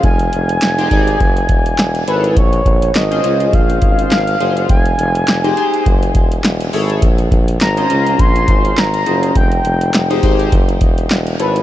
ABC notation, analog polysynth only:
X:1
M:4/4
L:1/16
Q:"Swing 16ths" 1/4=103
K:Bbm
V:1 name="Analog polysynth"
z4 z [E=GAc] [EGA=d]2 z6 [_FA=A_d]2 | z4 z [DFAc] [DFAc]6 z2 [DFAc]2 | z4 z [E=GAc] [EGAc]2 z6 [_FA=Ad]2 | z4 z [DFAc] [DFAc]6 z2 [DFAc]2 |
z4 z [E=GAc] [EGAc]2 z6 [_FA=Ad]2 |]